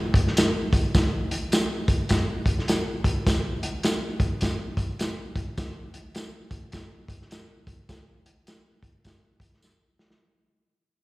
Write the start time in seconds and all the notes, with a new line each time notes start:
0.14 kick, closed hi-hat
0.27 snare
0.37 snare, closed hi-hat, tambourine
0.73 kick, closed hi-hat
0.95 kick, snare, closed hi-hat, tambourine
1.31 closed hi-hat
1.52 snare, closed hi-hat, tambourine
1.88 kick, closed hi-hat
2.09 kick, snare, closed hi-hat, tambourine
2.46 kick, closed hi-hat
2.59 snare
2.68 snare, closed hi-hat, tambourine
3.04 kick, closed hi-hat
3.27 kick, snare, closed hi-hat, tambourine
3.63 closed hi-hat
3.83 snare, closed hi-hat, tambourine
4.20 kick, closed hi-hat
4.41 kick, snare, closed hi-hat, tambourine
4.77 kick, closed hi-hat
4.99 snare, closed hi-hat, tambourine
5.36 kick, closed hi-hat
5.58 kick, snare, closed hi-hat, tambourine
5.94 closed hi-hat
6.15 snare, closed hi-hat, tambourine
6.51 kick, closed hi-hat
6.72 kick, snare, closed hi-hat, tambourine
7.08 kick, closed hi-hat
7.22 snare
7.31 snare, closed hi-hat, tambourine
7.67 kick, closed hi-hat
7.89 kick, snare, closed hi-hat, tambourine
8.26 closed hi-hat
8.47 snare, closed hi-hat, tambourine
8.83 kick, closed hi-hat
9.05 kick, snare, closed hi-hat, tambourine
9.40 kick, closed hi-hat
9.53 snare
9.62 snare, tambourine
9.99 snare
10.10 snare